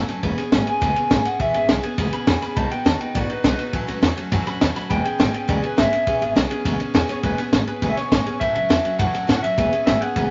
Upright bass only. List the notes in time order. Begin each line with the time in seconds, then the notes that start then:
0.09 muted upright bass stroke
0.23 E1
0.38 muted upright bass stroke
0.53 G#1
0.67 muted upright bass stroke
0.82 C#2
0.97 muted upright bass stroke
1.11 G#1
1.26 muted upright bass stroke
1.40 E1
1.55 G#1
1.69 B1
1.84 muted upright bass stroke
1.98 C#2
2.13 muted upright bass stroke
2.27 E2
2.57 B1
2.85 D#2
3.00 muted upright bass stroke
3.15 A1
3.30 muted upright bass stroke
3.44 B1
3.59 muted upright bass stroke
3.73 A1
3.88 C#2
4.02 E2
4.17 muted upright bass stroke
4.32 F#2
4.46 muted upright bass stroke
4.61 D#2
4.76 muted upright bass stroke
4.90 E1
5.19 G#1
5.49 C#2
5.78 G#1
5.92 muted upright bass stroke
6.07 E1
6.21 G#1
6.36 B1
6.65 C#2
6.79 muted upright bass stroke
6.94 E2
7.23 E1
7.38 muted upright bass stroke
7.52 G#1
7.67 muted upright bass stroke
7.82 C#2
7.96 muted upright bass stroke
8.12 G#1
8.26 muted upright bass stroke
8.41 A1
8.55 C#2
8.69 E2
8.99 F#2
9.14 muted upright bass stroke
9.29 A2
9.43 muted upright bass stroke
9.58 E1
9.72 muted upright bass stroke
9.87 G#1
10.01 muted upright bass stroke
10.16 C#2